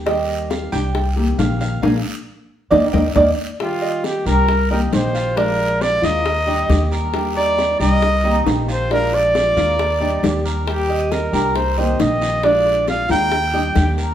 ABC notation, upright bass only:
X:1
M:4/4
L:1/8
Q:1/4=136
K:Eb
V:1 name="Upright bass" clef=bass
E,,3 C,,3 B,,,2 | B,,, z3 E,, E,, E,, z | z3 C,,3 B,,,2- | B,,,3 E,,3 E,,2- |
E,,3 C,,3 B,,,2- | B,,,3 E,,3 E,,2- | E,,3 C,,3 B,,,2- | B,,,3 E,,3 E,,2 |]